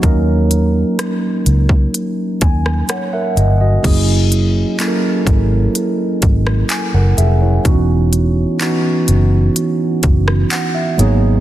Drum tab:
CC |----------------|x---------------|----------------|
HH |x-x-x-x-x-x-x-x-|x-x-x-x-x-x-x-x-|x-x-x-x-x-x-x-x-|
CP |----------------|----x-------x---|----x-------x---|
SD |----r------rr---|-----------r----|-----------r----|
BD |o------o--o-----|o-----o---o-----|o---------o-----|